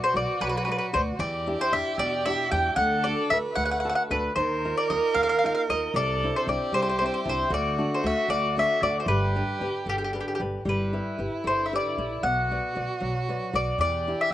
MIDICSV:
0, 0, Header, 1, 5, 480
1, 0, Start_track
1, 0, Key_signature, 1, "major"
1, 0, Tempo, 528634
1, 1086, Time_signature, 6, 3, 24, 8
1, 4924, Tempo, 522648
1, 13109, End_track
2, 0, Start_track
2, 0, Title_t, "Mandolin"
2, 0, Program_c, 0, 25
2, 34, Note_on_c, 0, 72, 79
2, 134, Note_off_c, 0, 72, 0
2, 150, Note_on_c, 0, 74, 76
2, 371, Note_off_c, 0, 74, 0
2, 374, Note_on_c, 0, 71, 90
2, 438, Note_off_c, 0, 71, 0
2, 448, Note_on_c, 0, 71, 67
2, 511, Note_off_c, 0, 71, 0
2, 521, Note_on_c, 0, 71, 68
2, 577, Note_off_c, 0, 71, 0
2, 588, Note_on_c, 0, 71, 55
2, 639, Note_off_c, 0, 71, 0
2, 650, Note_on_c, 0, 71, 66
2, 701, Note_off_c, 0, 71, 0
2, 712, Note_on_c, 0, 71, 60
2, 775, Note_off_c, 0, 71, 0
2, 851, Note_on_c, 0, 72, 82
2, 914, Note_off_c, 0, 72, 0
2, 1087, Note_on_c, 0, 74, 85
2, 1431, Note_off_c, 0, 74, 0
2, 1463, Note_on_c, 0, 72, 88
2, 1567, Note_off_c, 0, 72, 0
2, 1571, Note_on_c, 0, 76, 81
2, 1785, Note_off_c, 0, 76, 0
2, 1810, Note_on_c, 0, 74, 97
2, 2048, Note_on_c, 0, 76, 88
2, 2068, Note_off_c, 0, 74, 0
2, 2280, Note_off_c, 0, 76, 0
2, 2283, Note_on_c, 0, 79, 81
2, 2500, Note_off_c, 0, 79, 0
2, 2507, Note_on_c, 0, 78, 90
2, 2758, Note_on_c, 0, 74, 79
2, 2778, Note_off_c, 0, 78, 0
2, 2982, Note_off_c, 0, 74, 0
2, 2998, Note_on_c, 0, 76, 84
2, 3062, Note_off_c, 0, 76, 0
2, 3228, Note_on_c, 0, 78, 85
2, 3301, Note_off_c, 0, 78, 0
2, 3319, Note_on_c, 0, 78, 67
2, 3362, Note_off_c, 0, 78, 0
2, 3372, Note_on_c, 0, 78, 68
2, 3439, Note_off_c, 0, 78, 0
2, 3450, Note_on_c, 0, 78, 54
2, 3518, Note_off_c, 0, 78, 0
2, 3536, Note_on_c, 0, 78, 69
2, 3579, Note_off_c, 0, 78, 0
2, 3590, Note_on_c, 0, 78, 63
2, 3652, Note_off_c, 0, 78, 0
2, 3732, Note_on_c, 0, 71, 74
2, 3947, Note_off_c, 0, 71, 0
2, 3956, Note_on_c, 0, 72, 79
2, 4333, Note_off_c, 0, 72, 0
2, 4336, Note_on_c, 0, 74, 79
2, 4444, Note_off_c, 0, 74, 0
2, 4449, Note_on_c, 0, 75, 68
2, 4666, Note_off_c, 0, 75, 0
2, 4671, Note_on_c, 0, 77, 88
2, 4739, Note_off_c, 0, 77, 0
2, 4750, Note_on_c, 0, 77, 67
2, 4794, Note_off_c, 0, 77, 0
2, 4805, Note_on_c, 0, 77, 74
2, 4879, Note_off_c, 0, 77, 0
2, 4890, Note_on_c, 0, 77, 57
2, 4945, Note_off_c, 0, 77, 0
2, 4956, Note_on_c, 0, 77, 68
2, 5024, Note_off_c, 0, 77, 0
2, 5038, Note_on_c, 0, 77, 67
2, 5098, Note_off_c, 0, 77, 0
2, 5177, Note_on_c, 0, 75, 85
2, 5391, Note_off_c, 0, 75, 0
2, 5418, Note_on_c, 0, 74, 89
2, 5758, Note_off_c, 0, 74, 0
2, 5788, Note_on_c, 0, 72, 65
2, 5890, Note_off_c, 0, 72, 0
2, 5902, Note_on_c, 0, 74, 71
2, 6132, Note_off_c, 0, 74, 0
2, 6136, Note_on_c, 0, 72, 89
2, 6197, Note_off_c, 0, 72, 0
2, 6275, Note_on_c, 0, 72, 59
2, 6339, Note_off_c, 0, 72, 0
2, 6360, Note_on_c, 0, 72, 62
2, 6414, Note_off_c, 0, 72, 0
2, 6424, Note_on_c, 0, 72, 61
2, 6477, Note_off_c, 0, 72, 0
2, 6500, Note_on_c, 0, 72, 57
2, 6548, Note_off_c, 0, 72, 0
2, 6642, Note_on_c, 0, 72, 81
2, 6841, Note_off_c, 0, 72, 0
2, 6867, Note_on_c, 0, 74, 83
2, 7198, Note_off_c, 0, 74, 0
2, 7241, Note_on_c, 0, 72, 65
2, 7333, Note_off_c, 0, 72, 0
2, 7350, Note_on_c, 0, 76, 72
2, 7551, Note_off_c, 0, 76, 0
2, 7565, Note_on_c, 0, 74, 94
2, 7797, Note_off_c, 0, 74, 0
2, 7834, Note_on_c, 0, 76, 77
2, 8037, Note_off_c, 0, 76, 0
2, 8053, Note_on_c, 0, 74, 77
2, 8204, Note_off_c, 0, 74, 0
2, 8208, Note_on_c, 0, 72, 61
2, 8270, Note_off_c, 0, 72, 0
2, 8283, Note_on_c, 0, 71, 82
2, 8965, Note_off_c, 0, 71, 0
2, 9030, Note_on_c, 0, 67, 70
2, 9082, Note_off_c, 0, 67, 0
2, 9110, Note_on_c, 0, 67, 51
2, 9157, Note_off_c, 0, 67, 0
2, 9168, Note_on_c, 0, 67, 55
2, 9224, Note_off_c, 0, 67, 0
2, 9248, Note_on_c, 0, 67, 45
2, 9298, Note_off_c, 0, 67, 0
2, 9316, Note_on_c, 0, 67, 53
2, 9363, Note_off_c, 0, 67, 0
2, 9384, Note_on_c, 0, 67, 42
2, 9430, Note_off_c, 0, 67, 0
2, 9449, Note_on_c, 0, 67, 53
2, 9495, Note_off_c, 0, 67, 0
2, 9761, Note_on_c, 0, 71, 63
2, 10434, Note_off_c, 0, 71, 0
2, 10480, Note_on_c, 0, 72, 70
2, 10645, Note_off_c, 0, 72, 0
2, 10649, Note_on_c, 0, 76, 51
2, 10714, Note_off_c, 0, 76, 0
2, 10740, Note_on_c, 0, 74, 77
2, 11178, Note_on_c, 0, 78, 79
2, 11202, Note_off_c, 0, 74, 0
2, 12343, Note_off_c, 0, 78, 0
2, 12393, Note_on_c, 0, 74, 79
2, 12600, Note_off_c, 0, 74, 0
2, 12625, Note_on_c, 0, 74, 91
2, 12994, Note_on_c, 0, 76, 78
2, 12997, Note_off_c, 0, 74, 0
2, 13093, Note_off_c, 0, 76, 0
2, 13109, End_track
3, 0, Start_track
3, 0, Title_t, "Violin"
3, 0, Program_c, 1, 40
3, 0, Note_on_c, 1, 66, 84
3, 1085, Note_on_c, 1, 67, 88
3, 1099, Note_off_c, 1, 66, 0
3, 2514, Note_on_c, 1, 69, 99
3, 2528, Note_off_c, 1, 67, 0
3, 3015, Note_on_c, 1, 71, 88
3, 3029, Note_off_c, 1, 69, 0
3, 3734, Note_off_c, 1, 71, 0
3, 3955, Note_on_c, 1, 70, 113
3, 5407, Note_on_c, 1, 69, 95
3, 5420, Note_off_c, 1, 70, 0
3, 5895, Note_on_c, 1, 67, 98
3, 5909, Note_off_c, 1, 69, 0
3, 6835, Note_on_c, 1, 66, 87
3, 6849, Note_off_c, 1, 67, 0
3, 8285, Note_on_c, 1, 67, 84
3, 8299, Note_off_c, 1, 66, 0
3, 9497, Note_off_c, 1, 67, 0
3, 9726, Note_on_c, 1, 64, 71
3, 11182, Note_on_c, 1, 66, 94
3, 11196, Note_off_c, 1, 64, 0
3, 12610, Note_on_c, 1, 67, 84
3, 12623, Note_off_c, 1, 66, 0
3, 13109, Note_off_c, 1, 67, 0
3, 13109, End_track
4, 0, Start_track
4, 0, Title_t, "Nylon-string guitar"
4, 0, Program_c, 2, 24
4, 0, Note_on_c, 2, 66, 39
4, 0, Note_on_c, 2, 71, 35
4, 0, Note_on_c, 2, 74, 43
4, 123, Note_off_c, 2, 66, 0
4, 128, Note_off_c, 2, 71, 0
4, 132, Note_off_c, 2, 74, 0
4, 134, Note_on_c, 2, 66, 49
4, 139, Note_on_c, 2, 71, 42
4, 142, Note_on_c, 2, 74, 50
4, 366, Note_on_c, 2, 54, 56
4, 526, Note_off_c, 2, 66, 0
4, 529, Note_off_c, 2, 71, 0
4, 531, Note_off_c, 2, 74, 0
4, 611, Note_on_c, 2, 66, 53
4, 616, Note_on_c, 2, 71, 46
4, 621, Note_on_c, 2, 74, 49
4, 834, Note_off_c, 2, 66, 0
4, 836, Note_off_c, 2, 71, 0
4, 841, Note_off_c, 2, 54, 0
4, 844, Note_off_c, 2, 74, 0
4, 845, Note_on_c, 2, 66, 52
4, 848, Note_on_c, 2, 71, 50
4, 855, Note_on_c, 2, 74, 59
4, 1034, Note_off_c, 2, 66, 0
4, 1035, Note_off_c, 2, 71, 0
4, 1040, Note_off_c, 2, 74, 0
4, 1081, Note_on_c, 2, 52, 64
4, 1332, Note_on_c, 2, 62, 45
4, 1337, Note_on_c, 2, 64, 41
4, 1340, Note_on_c, 2, 67, 50
4, 1555, Note_off_c, 2, 52, 0
4, 1558, Note_off_c, 2, 62, 0
4, 1564, Note_off_c, 2, 64, 0
4, 1565, Note_off_c, 2, 67, 0
4, 1569, Note_on_c, 2, 62, 54
4, 1575, Note_on_c, 2, 67, 50
4, 1577, Note_on_c, 2, 64, 45
4, 1801, Note_on_c, 2, 47, 58
4, 1958, Note_off_c, 2, 62, 0
4, 1962, Note_off_c, 2, 64, 0
4, 1963, Note_off_c, 2, 67, 0
4, 2053, Note_on_c, 2, 62, 44
4, 2057, Note_on_c, 2, 64, 45
4, 2065, Note_on_c, 2, 67, 50
4, 2272, Note_off_c, 2, 47, 0
4, 2272, Note_off_c, 2, 62, 0
4, 2277, Note_off_c, 2, 64, 0
4, 2283, Note_on_c, 2, 62, 43
4, 2286, Note_off_c, 2, 67, 0
4, 2288, Note_on_c, 2, 64, 43
4, 2297, Note_on_c, 2, 67, 47
4, 2470, Note_off_c, 2, 62, 0
4, 2473, Note_off_c, 2, 64, 0
4, 2478, Note_off_c, 2, 67, 0
4, 2524, Note_on_c, 2, 50, 66
4, 2781, Note_on_c, 2, 62, 46
4, 2784, Note_on_c, 2, 66, 40
4, 2787, Note_on_c, 2, 69, 49
4, 2996, Note_off_c, 2, 50, 0
4, 2998, Note_off_c, 2, 62, 0
4, 3003, Note_off_c, 2, 69, 0
4, 3004, Note_off_c, 2, 66, 0
4, 3009, Note_on_c, 2, 62, 40
4, 3013, Note_on_c, 2, 66, 38
4, 3015, Note_on_c, 2, 69, 49
4, 3238, Note_on_c, 2, 57, 49
4, 3401, Note_off_c, 2, 62, 0
4, 3403, Note_off_c, 2, 69, 0
4, 3404, Note_off_c, 2, 66, 0
4, 3489, Note_on_c, 2, 62, 47
4, 3494, Note_on_c, 2, 66, 40
4, 3496, Note_on_c, 2, 69, 43
4, 3714, Note_off_c, 2, 57, 0
4, 3715, Note_off_c, 2, 62, 0
4, 3717, Note_off_c, 2, 66, 0
4, 3719, Note_off_c, 2, 69, 0
4, 3726, Note_on_c, 2, 62, 47
4, 3730, Note_on_c, 2, 66, 38
4, 3730, Note_on_c, 2, 69, 50
4, 3914, Note_off_c, 2, 62, 0
4, 3915, Note_off_c, 2, 66, 0
4, 3916, Note_off_c, 2, 69, 0
4, 3963, Note_on_c, 2, 51, 62
4, 4219, Note_on_c, 2, 63, 40
4, 4225, Note_on_c, 2, 65, 38
4, 4225, Note_on_c, 2, 70, 44
4, 4438, Note_off_c, 2, 51, 0
4, 4445, Note_off_c, 2, 63, 0
4, 4453, Note_off_c, 2, 65, 0
4, 4454, Note_off_c, 2, 70, 0
4, 4456, Note_on_c, 2, 63, 40
4, 4463, Note_on_c, 2, 65, 42
4, 4467, Note_on_c, 2, 70, 46
4, 4688, Note_on_c, 2, 58, 53
4, 4845, Note_off_c, 2, 63, 0
4, 4850, Note_off_c, 2, 65, 0
4, 4851, Note_off_c, 2, 70, 0
4, 4937, Note_on_c, 2, 63, 49
4, 4943, Note_on_c, 2, 65, 43
4, 4948, Note_on_c, 2, 70, 55
4, 5161, Note_off_c, 2, 58, 0
4, 5164, Note_off_c, 2, 63, 0
4, 5169, Note_off_c, 2, 65, 0
4, 5169, Note_off_c, 2, 70, 0
4, 5175, Note_on_c, 2, 63, 45
4, 5179, Note_on_c, 2, 65, 38
4, 5183, Note_on_c, 2, 70, 51
4, 5360, Note_off_c, 2, 63, 0
4, 5363, Note_off_c, 2, 65, 0
4, 5363, Note_off_c, 2, 70, 0
4, 5403, Note_on_c, 2, 48, 63
4, 5665, Note_on_c, 2, 60, 47
4, 5669, Note_on_c, 2, 62, 37
4, 5676, Note_on_c, 2, 64, 44
4, 5877, Note_off_c, 2, 48, 0
4, 5880, Note_off_c, 2, 60, 0
4, 5884, Note_off_c, 2, 62, 0
4, 5886, Note_off_c, 2, 64, 0
4, 5891, Note_on_c, 2, 60, 48
4, 5894, Note_on_c, 2, 62, 41
4, 5899, Note_on_c, 2, 64, 56
4, 6121, Note_on_c, 2, 55, 49
4, 6281, Note_off_c, 2, 60, 0
4, 6283, Note_off_c, 2, 62, 0
4, 6285, Note_off_c, 2, 64, 0
4, 6382, Note_on_c, 2, 60, 43
4, 6387, Note_on_c, 2, 62, 47
4, 6390, Note_on_c, 2, 64, 50
4, 6587, Note_off_c, 2, 60, 0
4, 6590, Note_off_c, 2, 62, 0
4, 6594, Note_off_c, 2, 55, 0
4, 6595, Note_off_c, 2, 64, 0
4, 6597, Note_on_c, 2, 60, 44
4, 6604, Note_on_c, 2, 62, 40
4, 6606, Note_on_c, 2, 64, 51
4, 6787, Note_off_c, 2, 60, 0
4, 6788, Note_off_c, 2, 62, 0
4, 6791, Note_off_c, 2, 64, 0
4, 6834, Note_on_c, 2, 50, 72
4, 7089, Note_on_c, 2, 57, 38
4, 7093, Note_on_c, 2, 62, 44
4, 7097, Note_on_c, 2, 66, 46
4, 7307, Note_off_c, 2, 50, 0
4, 7311, Note_off_c, 2, 57, 0
4, 7311, Note_off_c, 2, 62, 0
4, 7315, Note_off_c, 2, 66, 0
4, 7321, Note_on_c, 2, 57, 51
4, 7324, Note_on_c, 2, 62, 38
4, 7326, Note_on_c, 2, 66, 58
4, 7540, Note_off_c, 2, 57, 0
4, 7551, Note_on_c, 2, 57, 54
4, 7711, Note_off_c, 2, 62, 0
4, 7713, Note_off_c, 2, 66, 0
4, 7800, Note_off_c, 2, 57, 0
4, 7811, Note_on_c, 2, 57, 49
4, 7820, Note_on_c, 2, 62, 44
4, 7823, Note_on_c, 2, 66, 60
4, 8037, Note_off_c, 2, 57, 0
4, 8039, Note_off_c, 2, 62, 0
4, 8043, Note_off_c, 2, 66, 0
4, 8048, Note_on_c, 2, 57, 44
4, 8051, Note_on_c, 2, 62, 43
4, 8054, Note_on_c, 2, 66, 58
4, 8230, Note_off_c, 2, 57, 0
4, 8231, Note_off_c, 2, 62, 0
4, 8233, Note_off_c, 2, 66, 0
4, 8283, Note_on_c, 2, 55, 68
4, 8537, Note_on_c, 2, 62, 40
4, 8540, Note_on_c, 2, 67, 40
4, 8546, Note_on_c, 2, 71, 49
4, 8753, Note_off_c, 2, 55, 0
4, 8758, Note_off_c, 2, 62, 0
4, 8761, Note_off_c, 2, 67, 0
4, 8765, Note_off_c, 2, 71, 0
4, 8769, Note_on_c, 2, 62, 42
4, 8772, Note_on_c, 2, 67, 45
4, 8776, Note_on_c, 2, 71, 51
4, 9003, Note_on_c, 2, 50, 52
4, 9161, Note_off_c, 2, 62, 0
4, 9163, Note_off_c, 2, 67, 0
4, 9166, Note_off_c, 2, 71, 0
4, 9261, Note_on_c, 2, 62, 43
4, 9266, Note_on_c, 2, 71, 48
4, 9267, Note_on_c, 2, 67, 43
4, 9479, Note_off_c, 2, 50, 0
4, 9481, Note_off_c, 2, 62, 0
4, 9486, Note_off_c, 2, 67, 0
4, 9491, Note_off_c, 2, 71, 0
4, 9492, Note_on_c, 2, 62, 43
4, 9497, Note_on_c, 2, 67, 37
4, 9502, Note_on_c, 2, 71, 47
4, 9679, Note_off_c, 2, 62, 0
4, 9681, Note_off_c, 2, 67, 0
4, 9684, Note_off_c, 2, 71, 0
4, 9727, Note_on_c, 2, 55, 61
4, 9982, Note_on_c, 2, 64, 39
4, 9985, Note_on_c, 2, 67, 33
4, 9989, Note_on_c, 2, 71, 44
4, 10205, Note_off_c, 2, 55, 0
4, 10205, Note_off_c, 2, 64, 0
4, 10212, Note_off_c, 2, 67, 0
4, 10216, Note_off_c, 2, 71, 0
4, 10216, Note_on_c, 2, 64, 41
4, 10223, Note_on_c, 2, 67, 35
4, 10227, Note_on_c, 2, 71, 50
4, 10449, Note_on_c, 2, 50, 49
4, 10611, Note_off_c, 2, 64, 0
4, 10615, Note_off_c, 2, 67, 0
4, 10617, Note_off_c, 2, 71, 0
4, 10716, Note_on_c, 2, 64, 39
4, 10716, Note_on_c, 2, 71, 45
4, 10718, Note_on_c, 2, 67, 36
4, 10927, Note_off_c, 2, 50, 0
4, 10937, Note_off_c, 2, 64, 0
4, 10939, Note_off_c, 2, 67, 0
4, 10942, Note_off_c, 2, 71, 0
4, 10948, Note_on_c, 2, 64, 44
4, 10950, Note_on_c, 2, 67, 37
4, 10953, Note_on_c, 2, 71, 41
4, 11131, Note_off_c, 2, 64, 0
4, 11132, Note_off_c, 2, 67, 0
4, 11134, Note_off_c, 2, 71, 0
4, 11178, Note_on_c, 2, 59, 60
4, 11433, Note_on_c, 2, 66, 38
4, 11437, Note_on_c, 2, 71, 41
4, 11442, Note_on_c, 2, 74, 46
4, 11644, Note_off_c, 2, 66, 0
4, 11648, Note_off_c, 2, 59, 0
4, 11651, Note_off_c, 2, 71, 0
4, 11653, Note_off_c, 2, 74, 0
4, 11655, Note_on_c, 2, 66, 43
4, 11660, Note_on_c, 2, 71, 39
4, 11668, Note_on_c, 2, 74, 48
4, 11886, Note_on_c, 2, 54, 51
4, 12047, Note_off_c, 2, 66, 0
4, 12051, Note_off_c, 2, 71, 0
4, 12052, Note_off_c, 2, 74, 0
4, 12144, Note_on_c, 2, 66, 43
4, 12149, Note_on_c, 2, 71, 38
4, 12154, Note_on_c, 2, 74, 48
4, 12360, Note_off_c, 2, 54, 0
4, 12360, Note_off_c, 2, 66, 0
4, 12365, Note_off_c, 2, 71, 0
4, 12368, Note_off_c, 2, 74, 0
4, 12371, Note_on_c, 2, 66, 44
4, 12376, Note_on_c, 2, 71, 39
4, 12380, Note_on_c, 2, 74, 53
4, 12558, Note_off_c, 2, 66, 0
4, 12561, Note_off_c, 2, 71, 0
4, 12562, Note_off_c, 2, 74, 0
4, 12607, Note_on_c, 2, 52, 57
4, 12869, Note_on_c, 2, 62, 39
4, 12873, Note_on_c, 2, 67, 40
4, 12875, Note_on_c, 2, 64, 35
4, 13078, Note_off_c, 2, 52, 0
4, 13080, Note_off_c, 2, 62, 0
4, 13082, Note_off_c, 2, 64, 0
4, 13086, Note_off_c, 2, 67, 0
4, 13109, End_track
5, 0, Start_track
5, 0, Title_t, "Upright bass"
5, 0, Program_c, 3, 32
5, 127, Note_on_c, 3, 35, 72
5, 205, Note_off_c, 3, 35, 0
5, 371, Note_on_c, 3, 35, 74
5, 687, Note_off_c, 3, 35, 0
5, 858, Note_on_c, 3, 38, 90
5, 1007, Note_off_c, 3, 38, 0
5, 1081, Note_on_c, 3, 40, 102
5, 1398, Note_off_c, 3, 40, 0
5, 1565, Note_on_c, 3, 40, 79
5, 1642, Note_off_c, 3, 40, 0
5, 1797, Note_on_c, 3, 40, 82
5, 2114, Note_off_c, 3, 40, 0
5, 2287, Note_on_c, 3, 40, 84
5, 2437, Note_off_c, 3, 40, 0
5, 2510, Note_on_c, 3, 38, 94
5, 2831, Note_off_c, 3, 38, 0
5, 3005, Note_on_c, 3, 38, 62
5, 3081, Note_off_c, 3, 38, 0
5, 3236, Note_on_c, 3, 38, 70
5, 3556, Note_off_c, 3, 38, 0
5, 3727, Note_on_c, 3, 38, 78
5, 3879, Note_off_c, 3, 38, 0
5, 3959, Note_on_c, 3, 39, 87
5, 4279, Note_off_c, 3, 39, 0
5, 4451, Note_on_c, 3, 39, 73
5, 4527, Note_off_c, 3, 39, 0
5, 4679, Note_on_c, 3, 39, 73
5, 4998, Note_off_c, 3, 39, 0
5, 5174, Note_on_c, 3, 39, 74
5, 5325, Note_off_c, 3, 39, 0
5, 5398, Note_on_c, 3, 36, 97
5, 5717, Note_off_c, 3, 36, 0
5, 5884, Note_on_c, 3, 36, 80
5, 5962, Note_off_c, 3, 36, 0
5, 6117, Note_on_c, 3, 36, 69
5, 6435, Note_off_c, 3, 36, 0
5, 6608, Note_on_c, 3, 36, 86
5, 6758, Note_off_c, 3, 36, 0
5, 6834, Note_on_c, 3, 38, 96
5, 7151, Note_off_c, 3, 38, 0
5, 7327, Note_on_c, 3, 38, 71
5, 7400, Note_off_c, 3, 38, 0
5, 7552, Note_on_c, 3, 38, 78
5, 7868, Note_off_c, 3, 38, 0
5, 8042, Note_on_c, 3, 38, 80
5, 8192, Note_off_c, 3, 38, 0
5, 8265, Note_on_c, 3, 31, 104
5, 8586, Note_off_c, 3, 31, 0
5, 8764, Note_on_c, 3, 31, 65
5, 8839, Note_off_c, 3, 31, 0
5, 8997, Note_on_c, 3, 31, 78
5, 9318, Note_off_c, 3, 31, 0
5, 9493, Note_on_c, 3, 31, 82
5, 9644, Note_off_c, 3, 31, 0
5, 9728, Note_on_c, 3, 31, 89
5, 10047, Note_off_c, 3, 31, 0
5, 10216, Note_on_c, 3, 31, 65
5, 10293, Note_off_c, 3, 31, 0
5, 10453, Note_on_c, 3, 31, 63
5, 10772, Note_off_c, 3, 31, 0
5, 10942, Note_on_c, 3, 34, 76
5, 11093, Note_off_c, 3, 34, 0
5, 11176, Note_on_c, 3, 35, 85
5, 11491, Note_off_c, 3, 35, 0
5, 11668, Note_on_c, 3, 35, 66
5, 11741, Note_off_c, 3, 35, 0
5, 11897, Note_on_c, 3, 35, 66
5, 12211, Note_off_c, 3, 35, 0
5, 12374, Note_on_c, 3, 35, 79
5, 12525, Note_off_c, 3, 35, 0
5, 12601, Note_on_c, 3, 40, 95
5, 12918, Note_off_c, 3, 40, 0
5, 13109, End_track
0, 0, End_of_file